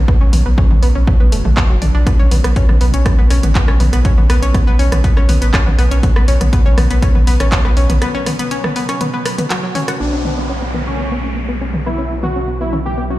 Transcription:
Already playing: synth drone B2 F#3
0.08 synth pluck B3, kick
0.21 analog synth bass B1, synth pluck C#4
0.33 analog synth bass B1, synth pluck B3, open hi-hat, mid tom
0.46 analog synth bass B1, synth pluck B3
0.58 synth pluck C#4, kick
0.71 analog synth bass B1, synth pluck B3, mid tom
0.83 analog synth bass B1, synth pluck B3, open hi-hat
0.95 analog synth bass B1, synth pluck C#4
1.07 synth pluck B3, kick, mid tom
1.20 analog synth bass B1, synth pluck B3
1.32 analog synth bass F#1, synth pluck A3, open hi-hat
1.45 analog synth bass B1, synth pluck A3, mid tom
1.57 synth pluck B3, kick, clap
1.70 analog synth bass F#1, synth pluck F#3
1.82 analog synth bass B1, synth pluck D4, open hi-hat, mid tom
1.95 analog synth bass B1, synth pluck D4
2.07 synth pluck B3, kick, cross-stick, closed hi-hat
2.19 analog synth bass B1, synth pluck C#4
2.31 analog synth bass B1, synth pluck B3, open hi-hat, mid tom
2.44 analog synth bass B1, synth pluck B3, cross-stick, closed hi-hat
2.56 synth pluck C#4, kick, closed hi-hat
2.69 analog synth bass B1, synth pluck B3, cross-stick, mid tom
2.81 analog synth bass B1, synth pluck B3, open hi-hat
2.94 analog synth bass B1, synth pluck C#4, closed hi-hat
3.06 synth pluck B3, kick, cross-stick, closed hi-hat, mid tom
3.19 analog synth bass B1, synth pluck B3
3.30 analog synth bass B1, synth pluck C#4, cross-stick, open hi-hat
3.43 analog synth bass A1, synth pluck B3, closed hi-hat, mid tom
3.55 synth pluck B3, kick, clap, closed hi-hat
3.68 analog synth bass B1, synth pluck C#4, cross-stick
3.80 analog synth bass B1, synth pluck B3, open hi-hat, mid tom
3.93 analog synth bass B1, synth pluck B3, cross-stick, closed hi-hat
4.05 synth pluck C#4, kick, closed hi-hat
4.18 analog synth bass B1, synth pluck B3, mid tom
4.30 analog synth bass B1, synth pluck B3, cross-stick, open hi-hat
4.42 analog synth bass B1, synth pluck C#4, closed hi-hat
4.54 synth pluck B3, kick, cross-stick, closed hi-hat, mid tom
4.67 analog synth bass B1, synth pluck B3
4.79 analog synth bass B1, synth pluck C#4, open hi-hat
4.92 analog synth bass B1, synth pluck B3, cross-stick, closed hi-hat, mid tom
5.04 synth pluck B3, kick, closed hi-hat
5.17 analog synth bass B1, synth pluck C#4, cross-stick
5.29 analog synth bass B1, synth pluck B3, open hi-hat, mid tom
5.42 analog synth bass A1, synth pluck B3, closed hi-hat
5.54 synth pluck C#4, kick, cross-stick, clap, closed hi-hat
5.66 analog synth bass B1, synth pluck B3, mid tom
5.78 analog synth bass B1, synth pluck B3, cross-stick, open hi-hat
5.91 analog synth bass B1, synth pluck C#4, closed hi-hat
6.03 synth pluck B3, kick, closed hi-hat, mid tom
6.16 analog synth bass B1, synth pluck B3, cross-stick
6.28 analog synth bass B1, synth pluck C#4, open hi-hat
6.41 analog synth bass B1, synth pluck B3, cross-stick, closed hi-hat, mid tom
6.53 synth pluck B3, kick, closed hi-hat
6.66 analog synth bass B1, synth pluck C#4
6.78 analog synth bass B1, synth pluck B3, cross-stick, open hi-hat, mid tom
6.90 analog synth bass B1, synth pluck B3, closed hi-hat
7.02 synth pluck C#4, kick, cross-stick, closed hi-hat
7.15 analog synth bass B1, synth pluck B3, mid tom
7.27 analog synth bass B1, synth pluck B3, open hi-hat
7.40 analog synth bass A1, synth pluck C#4, cross-stick, closed hi-hat
7.52 synth pluck B3, kick, clap, closed hi-hat, mid tom
7.65 analog synth bass B1, synth pluck B3, cross-stick
7.77 analog synth bass B1, synth pluck C#4, open hi-hat
7.90 analog synth bass B1, synth pluck B3, closed hi-hat, mid tom
8.02 synth pluck B3, cross-stick, closed hi-hat
8.15 synth pluck C#4
8.26 synth pluck B3, cross-stick, open hi-hat, mid tom
8.39 synth pluck B3, closed hi-hat
8.51 synth pluck C#4, closed hi-hat
8.64 synth pluck B3, cross-stick, mid tom
8.76 synth pluck B3, open hi-hat
8.89 synth pluck C#4, cross-stick, closed hi-hat
9.01 synth pluck B3, closed hi-hat, mid tom
9.14 synth pluck B3
9.26 synth pluck B4, cross-stick, open hi-hat
9.38 synth pluck B3, closed hi-hat, mid tom
9.50 synth pluck F#3, cross-stick, clap, closed hi-hat
9.63 synth pluck F#3
9.75 synth pluck C#4, open hi-hat, mid tom
9.88 synth pluck F#4, cross-stick, closed hi-hat
10.00 analog synth bass B1, synth drone B2 F#3, synth pluck B3, analog synth lead D4, ambient pad D4 B4 B5, downlifter
10.13 synth pluck C#4
10.25 synth pluck B3, mid tom
10.38 synth pluck B3
10.49 synth pluck C#4
10.62 synth pluck B3
10.74 synth pluck B3, mid tom
10.87 analog synth lead C#4, synth pluck C#4
10.99 synth pluck B3
11.12 synth pluck B3
11.24 synth pluck C#4
11.37 synth pluck B3
11.49 synth pluck B3
11.61 synth pluck C#4
11.73 synth pluck B3, mid tom
11.86 synth pluck B3, analog synth lead E4
11.98 synth pluck C#4
12.11 synth pluck B3
12.23 synth pluck B3, analog synth lead F#4, mid tom
12.36 synth pluck C#4
12.48 synth pluck B3
12.61 synth pluck B3, analog synth lead E4
12.73 synth pluck C#4, mid tom
12.86 synth pluck B3, analog synth lead G4
12.97 synth pluck B3
13.10 synth pluck C#4, analog synth lead F#4

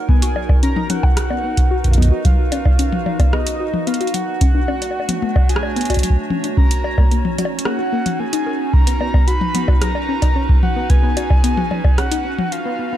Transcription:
Already playing: ambient pad D#4 F#4 A#4 C#5
0.09 synth arpeggio sound B3, soft synth lead G#5, kick
0.22 synth arpeggio sound F#4, closed hi-hat
0.30 ambient pad B4
0.36 synth arpeggio sound F#3, high bongo
0.49 kick, high bongo
0.63 synth arpeggio sound C#4, soft synth lead A#5, closed hi-hat
0.76 synth arpeggio sound D#4, high tom
0.90 synth arpeggio sound C#4, soft synth lead F#5, closed hi-hat, high tom
1.03 kick, high bongo
1.17 cross-stick, closed hi-hat
1.30 synth arpeggio sound B3, high bongo
1.44 synth arpeggio sound B3
1.57 kick, closed hi-hat
1.71 synth arpeggio sound F#4
1.84 kick, closed hi-hat
1.88 soft synth lead F5, kick
1.91 kick, closed hi-hat
1.94 soft synth lead D#5, kick
1.98 synth arpeggio sound B3, kick, high tom
2.01 kick, closed hi-hat
2.05 kick
2.08 synth arpeggio sound F#4, kick
2.25 synth arpeggio sound F#3, soft synth lead F5, kick, closed hi-hat
2.52 synth arpeggio sound C#4, closed hi-hat, high bongo
2.65 synth arpeggio sound D#4, kick, high bongo
2.79 synth arpeggio sound C#4, closed hi-hat
2.93 high tom
3.06 high tom, high bongo
3.19 synth arpeggio sound B3, kick, closed hi-hat, high bongo
3.33 synth arpeggio sound B3, soft synth lead D#5, cross-stick
3.47 closed hi-hat
3.60 synth arpeggio sound F#4
3.74 high tom
3.87 synth arpeggio sound B3, soft synth lead F5, closed hi-hat
3.94 closed hi-hat
4.01 synth arpeggio sound F#4, closed hi-hat
4.07 closed hi-hat
4.14 synth arpeggio sound F#3, soft synth lead F#5, closed hi-hat
4.41 ambient pad A3, synth arpeggio sound C#4, kick, closed hi-hat
4.55 synth arpeggio sound D4
4.60 ambient pad D4
4.68 synth arpeggio sound C#4, high bongo
4.75 ambient pad C#5
4.82 closed hi-hat, high bongo
4.91 high bongo
5.00 high bongo
5.09 synth arpeggio sound B3, closed hi-hat, high tom
5.22 synth arpeggio sound B3, high tom
5.36 kick, high bongo
5.49 synth arpeggio sound F#4, soft synth lead G#5, closed hi-hat
5.56 cross-stick
5.63 high bongo
5.76 synth arpeggio sound B3, closed hi-hat
5.81 closed hi-hat
5.85 closed hi-hat
5.90 synth arpeggio sound F#4, kick, closed hi-hat, high bongo
5.92 closed hi-hat, high bongo
5.94 kick, high bongo
5.97 closed hi-hat, high bongo
6.01 synth arpeggio sound F#3, closed hi-hat, high bongo
6.10 kick
6.30 synth arpeggio sound C#4, high tom
6.44 synth arpeggio sound D4, closed hi-hat
6.57 synth arpeggio sound C#4, ambient pad C#4, soft synth lead A#5, kick
6.71 closed hi-hat
6.77 ambient pad D#4
6.84 high bongo
6.98 synth arpeggio sound A#3, kick, high bongo
7.11 synth arpeggio sound A#3, closed hi-hat
7.25 high tom
7.38 synth arpeggio sound F#4, closed hi-hat, high tom, high bongo
7.45 high bongo
7.59 closed hi-hat
7.65 synth arpeggio sound A#3, soft synth lead F#5, cross-stick
7.79 synth arpeggio sound F#4
7.93 synth arpeggio sound A#3
8.06 closed hi-hat, high tom
8.19 synth arpeggio sound A#3, soft synth lead G#5
8.33 synth arpeggio sound D#4, closed hi-hat
8.46 synth arpeggio sound A#4
8.74 soft synth lead A#5, kick
8.87 synth arpeggio sound B3, ambient pad B4, closed hi-hat
9.01 synth arpeggio sound B3, high bongo
9.14 synth arpeggio sound B3, kick, high bongo
9.28 synth arpeggio sound F#4, soft synth lead B5, closed hi-hat
9.41 high tom
9.55 synth arpeggio sound B3, closed hi-hat, high tom
9.68 synth arpeggio sound F#4, kick, high bongo
9.82 synth arpeggio sound F#3, soft synth lead A#5, cross-stick, closed hi-hat
9.95 high bongo
10.09 synth arpeggio sound C#4
10.22 synth arpeggio sound D#4, kick, closed hi-hat, high bongo
10.36 synth arpeggio sound C#4
10.49 kick
10.63 soft synth lead F#5, high tom
10.76 synth arpeggio sound B3
10.90 synth arpeggio sound B3, soft synth lead G#5, kick, closed hi-hat
11.03 synth arpeggio sound B3
11.17 synth arpeggio sound F#4, closed hi-hat, high bongo
11.30 kick, high bongo
11.44 synth arpeggio sound B3, closed hi-hat
11.57 synth arpeggio sound F#4, high tom
11.71 synth arpeggio sound F#3, high tom, high bongo
11.84 kick, high bongo
11.98 synth arpeggio sound C#4, soft synth lead F#5, cross-stick, closed hi-hat
12.11 synth arpeggio sound D#4, closed hi-hat
12.25 synth arpeggio sound C#4
12.39 high tom
12.52 soft synth lead F5, closed hi-hat
12.66 synth arpeggio sound B3
12.79 synth arpeggio sound B3
12.93 synth arpeggio sound B3

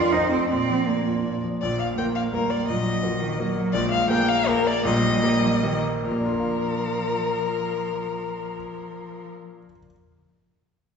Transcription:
Already playing: grand piano F2 F4 A#4, cello F4, violin D5
0.12 grand piano F2, cello D#4, violin C5
0.31 cello C4, grand piano F4 A4
0.49 grand piano A#2, cello C4, violin D5
0.70 grand piano F3
0.87 cello A#3, grand piano D4
1.07 grand piano F4
1.25 grand piano A#2
1.44 grand piano F3
1.62 grand piano A#1 A#2, cello F3, violin D5
1.80 violin F5
1.96 cello A#3, grand piano A#3 F4 A#4, violin G5
2.15 violin F5
2.33 cello G3, grand piano A#3 F4 A#4, violin A#4
2.50 violin D5
2.68 grand piano A#1 A#2, cello F#3, violin D#5
3.03 cello F3, grand piano A#3 F#4 A#4
3.22 cello D#3
3.39 cello F#3, grand piano A#3 F#4 A#4
3.56 cello F#3
3.72 grand piano A#1 A#2, cello G#3, violin D5
3.91 violin F5
4.09 grand piano A#3 G#4 A#4, cello A#3, violin G5
4.29 violin F5
4.47 grand piano A#3 G#4 A#4, violin A#4
4.67 violin D5
4.84 grand piano A#1 A#2, cello G3, violin D#5
5.22 cello G3, grand piano A#3 G4 A#4
5.43 cello F3
5.62 cello D#3, grand piano A#3 G4 A#4
6.04 grand piano A#2, cello F3, violin A#4
6.12 grand piano A#3
6.19 grand piano D4
6.26 grand piano F4
6.33 grand piano A#4
6.40 grand piano F5

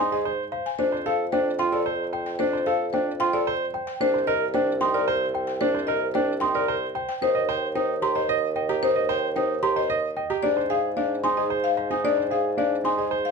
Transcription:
Already playing: bassoon G#2
0.00 grand piano D#4, marimba G#5, celesta C6
0.12 grand piano G#4, marimba D#5
0.25 grand piano C5
0.52 grand piano C5, celesta F5
0.66 marimba G#5
0.79 bassoon F2, grand piano D4, marimba C5
0.92 grand piano C5
1.06 grand piano A4, marimba F5
1.32 grand piano D4, marimba C5, celesta G5
1.59 grand piano F4, marimba G5, celesta C6
1.72 grand piano A4, marimba D5
1.86 grand piano C5
2.13 grand piano C5, celesta G5
2.26 marimba G5
2.39 grand piano D4, marimba C5
2.53 grand piano C5
2.66 grand piano A4, marimba F5
2.93 grand piano D4, marimba C5, celesta G5
3.20 grand piano F4, marimba G5, celesta C6
3.33 grand piano A4, marimba D5
3.47 grand piano C5
3.74 grand piano C5, celesta G5
3.87 marimba G5
4.01 bassoon C2, grand piano D4, marimba C5
4.14 grand piano C5
4.27 grand piano A#4, marimba D#5
4.54 grand piano D4, marimba C5, celesta G5
4.81 grand piano D#4, marimba G5, celesta C6
4.94 grand piano A#4, marimba D5
5.08 grand piano C5
5.34 grand piano C5, celesta G5
5.47 marimba G5
5.61 grand piano D4, marimba C5
5.75 grand piano C5
5.87 grand piano A#4, marimba D#5
6.14 grand piano D4, marimba C5, celesta G5
6.40 grand piano D#4, marimba G5, celesta C6
6.55 grand piano A#4, marimba D5
6.68 grand piano C5
6.95 grand piano C5, celesta G5
7.09 marimba G5
7.22 bassoon D#2, grand piano D#4, marimba C5
7.35 grand piano D#5
7.49 grand piano C5, marimba G5
7.75 grand piano D#4, marimba C5, celesta G5
8.02 grand piano G4, marimba A#5, celesta C6
8.15 grand piano C5, marimba D#5
8.29 grand piano D#5
8.56 grand piano D#5, celesta G5
8.69 grand piano G4, marimba A#5
8.83 grand piano D#4, marimba C5
8.96 grand piano D#5
9.09 grand piano C5, marimba G5
9.36 grand piano D#4, marimba C5, celesta G5
9.63 grand piano G4, marimba A#5, celesta C6
9.76 grand piano C5, marimba D#5
9.90 grand piano D#5
10.17 grand piano D#5, celesta G5
10.30 grand piano G4, marimba A#5
10.43 bassoon G#2, grand piano D4, marimba D5
10.57 grand piano C5
10.70 grand piano G#4, marimba F5
10.97 grand piano D4, marimba D5, celesta F5
11.24 grand piano D#4, marimba G#5, celesta C6
11.37 grand piano G#4, marimba D#5
11.50 grand piano C5
11.64 marimba F5
11.77 grand piano C5, celesta F5
11.91 grand piano D#4, marimba G#5
12.04 grand piano D4, marimba D5
12.18 grand piano C5
12.31 grand piano G#4, marimba F5
12.57 grand piano D4, marimba D5, celesta F5
12.84 grand piano D#4, marimba G#5, celesta C6
12.98 grand piano G#4, marimba D#5
13.11 grand piano C5
13.25 marimba F5

